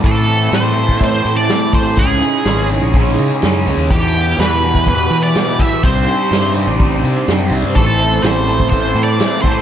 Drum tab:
HH |o-o-o-o-o-o-o-o-|o-o-o-o-o-o-o-o-|o-o-o-o-o-o-o-o-|o-o-o-o-o-o-o-o-|
SD |----o-------o---|----o-------o---|----o-------o---|----o-------o---|
BD |o------oo-----o-|o-------o-------|o------oo-----o-|o-------o-------|

HH |o-o-o-o-o-o-o-o-|
SD |----o-------o---|
BD |o------oo-----o-|